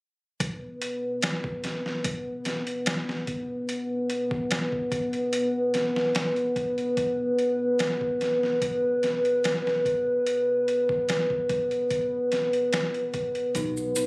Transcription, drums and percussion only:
0.40 kick, closed hi-hat
0.82 closed hi-hat
1.22 snare, closed hi-hat
1.44 kick
1.64 snare, closed hi-hat
1.86 snare
2.04 kick, closed hi-hat
2.45 snare, closed hi-hat
2.67 closed hi-hat
2.86 snare, closed hi-hat
3.09 snare
3.27 kick, closed hi-hat
3.69 closed hi-hat
4.10 closed hi-hat
4.31 kick
4.51 snare, closed hi-hat
4.72 kick
4.92 kick, closed hi-hat
5.13 closed hi-hat
5.33 closed hi-hat
5.74 snare, closed hi-hat
5.96 snare
6.15 snare, closed hi-hat
6.36 closed hi-hat
6.56 kick, closed hi-hat
6.78 closed hi-hat
6.97 kick, closed hi-hat
7.39 closed hi-hat
7.79 snare, closed hi-hat
8.01 kick
8.21 snare, closed hi-hat
8.43 snare
8.62 kick, closed hi-hat
9.03 snare, closed hi-hat
9.25 closed hi-hat
9.44 snare, closed hi-hat
9.67 snare
9.85 kick, closed hi-hat
10.27 closed hi-hat
10.68 closed hi-hat
10.89 kick
11.09 snare, closed hi-hat
11.30 kick
11.49 kick, closed hi-hat
11.71 closed hi-hat
11.91 kick, closed hi-hat
12.32 snare, closed hi-hat
12.53 closed hi-hat
12.73 snare, closed hi-hat
12.94 closed hi-hat
13.14 kick, closed hi-hat
13.35 closed hi-hat
13.55 kick, closed hi-hat, maracas
13.77 maracas
13.96 closed hi-hat, maracas

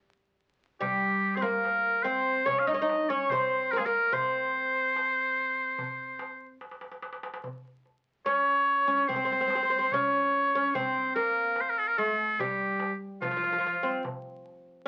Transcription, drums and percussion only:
0.81 darbuka dum
1.65 darbuka tek
1.85 darbuka ka
2.47 darbuka dum
2.89 darbuka tek
3.30 darbuka dum
3.72 darbuka ka
4.13 darbuka dum
4.55 darbuka ka
4.75 darbuka ka
4.96 darbuka tek
5.37 darbuka ka
5.78 darbuka dum
6.19 darbuka tek
6.61 darbuka tek
6.71 darbuka ka
6.81 darbuka tek
6.92 darbuka ka
7.02 darbuka tek
7.13 darbuka ka
7.23 darbuka tek
7.34 darbuka ka
7.44 darbuka dum
7.65 darbuka ka
7.85 darbuka ka
8.26 darbuka tek
9.10 darbuka dum
9.50 darbuka tek
9.91 darbuka dum
10.75 darbuka dum
11.16 darbuka ka
11.56 darbuka tek
12.39 darbuka dum
12.60 darbuka ka
12.80 darbuka tek
13.22 darbuka dum
14.05 darbuka dum
14.25 darbuka ka
14.45 darbuka ka

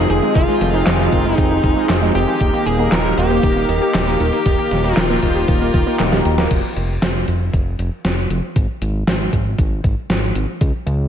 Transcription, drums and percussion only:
0.10 closed hi-hat
0.35 kick, closed hi-hat
0.61 closed hi-hat
0.87 snare, clap, closed hi-hat
1.12 kick, closed hi-hat
1.38 kick, closed hi-hat
1.64 kick, closed hi-hat
1.89 snare, clap, closed hi-hat
2.15 closed hi-hat
2.41 kick, closed hi-hat
2.67 closed hi-hat
2.92 snare, clap, closed hi-hat
3.18 closed hi-hat
3.43 kick, closed hi-hat
3.69 closed hi-hat
3.94 snare, clap, closed hi-hat
4.20 closed hi-hat
4.46 kick, closed hi-hat
4.71 snare, closed hi-hat
4.97 snare, clap, closed hi-hat
5.23 kick, closed hi-hat
5.48 kick, closed hi-hat
5.74 kick, closed hi-hat
5.99 snare, clap, closed hi-hat
6.12 snare
6.25 closed hi-hat
6.38 snare
6.51 kick, closed hi-hat, crash
6.77 closed hi-hat
7.02 snare, closed hi-hat
7.28 closed hi-hat
7.53 kick, closed hi-hat
7.79 closed hi-hat
8.05 snare, closed hi-hat
8.30 closed hi-hat
8.56 kick, closed hi-hat
8.82 closed hi-hat
9.07 snare, closed hi-hat
9.33 kick, closed hi-hat
9.59 kick, closed hi-hat
9.84 kick, closed hi-hat
10.10 snare, closed hi-hat
10.35 closed hi-hat
10.61 kick, closed hi-hat
10.87 closed hi-hat

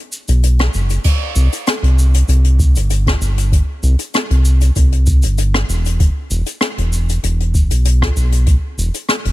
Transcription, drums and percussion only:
0.12 shaker
0.28 closed hi-hat, shaker
0.43 closed hi-hat, shaker
0.59 cross-stick, closed hi-hat
0.74 shaker
0.90 closed hi-hat, shaker
1.04 kick, closed hi-hat, crash, shaker
1.36 shaker
1.53 closed hi-hat, shaker
1.67 cross-stick, closed hi-hat, shaker
1.84 closed hi-hat
1.99 shaker
2.14 closed hi-hat, shaker
2.28 closed hi-hat, shaker
2.44 closed hi-hat
2.59 kick, shaker
2.76 closed hi-hat, shaker
2.90 closed hi-hat, shaker
3.06 kick, cross-stick, closed hi-hat
3.22 shaker
3.38 closed hi-hat, shaker
3.52 kick, closed hi-hat, shaker
3.83 shaker
3.99 closed hi-hat, shaker
4.14 cross-stick, closed hi-hat, shaker
4.30 closed hi-hat
4.45 shaker
4.61 closed hi-hat, shaker
4.76 kick, closed hi-hat, shaker
4.92 closed hi-hat
5.06 kick, shaker
5.22 closed hi-hat, shaker
5.38 closed hi-hat, shaker
5.54 cross-stick, closed hi-hat
5.69 shaker
5.85 closed hi-hat, shaker
6.00 kick, closed hi-hat, shaker
6.31 shaker
6.46 closed hi-hat, shaker
6.61 cross-stick, closed hi-hat, shaker
6.78 closed hi-hat
6.93 shaker
7.09 closed hi-hat, shaker
7.23 closed hi-hat, shaker
7.40 closed hi-hat
7.54 kick, shaker
7.71 closed hi-hat, shaker
7.85 closed hi-hat, shaker
8.02 kick, cross-stick, closed hi-hat
8.17 shaker
8.32 closed hi-hat, shaker
8.46 kick, closed hi-hat, shaker
8.79 shaker
8.94 closed hi-hat, shaker
9.09 cross-stick, closed hi-hat, shaker
9.25 closed hi-hat

